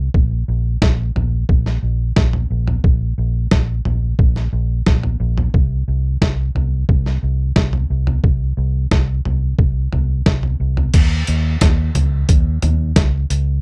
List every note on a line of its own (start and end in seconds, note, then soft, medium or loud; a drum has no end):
0.14 0.42 A#1 medium
0.14 kick medium
0.48 0.76 A#1 medium
0.82 1.09 A#1 medium
0.82 kick medium
0.82 snare loud
1.16 1.43 A#1 medium
1.16 floor tom medium
1.49 1.77 A#1 medium
1.49 kick medium
1.66 snare soft
1.83 2.11 A#1 medium
2.16 2.44 A#1 medium
2.16 kick medium
2.16 snare medium
2.33 floor tom medium
2.51 2.78 A#1 medium
2.67 floor tom medium
2.84 3.12 A#1 medium
2.84 kick loud
3.18 3.46 A#1 medium
3.51 3.79 A#1 medium
3.51 kick medium
3.51 snare loud
3.85 4.13 A#1 medium
3.85 floor tom medium
4.19 4.47 A#1 loud
4.19 kick loud
4.36 snare soft
4.53 4.80 A#1 medium
4.86 5.14 A#1 medium
4.86 kick medium
4.86 snare medium
5.03 floor tom soft
5.20 5.48 A#1 medium
5.38 floor tom medium
5.54 5.82 C2 medium
5.54 kick medium
5.88 6.16 C2 medium
6.21 6.49 C2 medium
6.21 kick loud
6.21 snare loud
6.55 6.83 C2 medium
6.55 floor tom soft
6.89 7.17 C2 loud
6.89 kick loud
7.06 snare soft
7.23 7.51 C2 medium
7.56 7.84 C2 medium
7.56 kick medium
7.56 snare medium
7.73 floor tom medium
7.90 8.18 C2 medium
8.07 floor tom medium
8.24 8.52 C2 medium
8.24 kick loud
8.57 8.85 C2 medium
8.91 9.19 C2 medium
8.91 kick loud
8.91 snare loud
9.25 9.53 C2 medium
9.25 floor tom medium
9.59 9.86 C2 medium
9.59 kick loud
9.93 10.21 C2 medium
9.93 floor tom medium
10.26 10.54 C2 medium
10.26 kick loud
10.26 snare loud
10.43 floor tom soft
10.60 10.88 C2 medium
10.77 floor tom medium
10.94 11.22 D#2 medium
10.94 kick loud
10.94 closed hi-hat medium
10.94 crash loud
11.27 11.56 D#2 loud
11.27 closed hi-hat medium
11.61 11.89 D#2 medium
11.61 kick loud
11.61 snare loud
11.61 closed hi-hat loud
11.95 12.23 C#2 medium
11.95 closed hi-hat medium
11.95 floor tom medium
12.29 12.57 D#2 loud
12.29 kick loud
12.29 closed hi-hat medium
12.62 12.90 D#2 medium
12.62 closed hi-hat medium
12.62 floor tom medium
12.96 13.24 C#2 loud
12.96 kick loud
12.96 snare loud
12.96 closed hi-hat medium
13.30 13.58 C#2 loud
13.30 closed hi-hat medium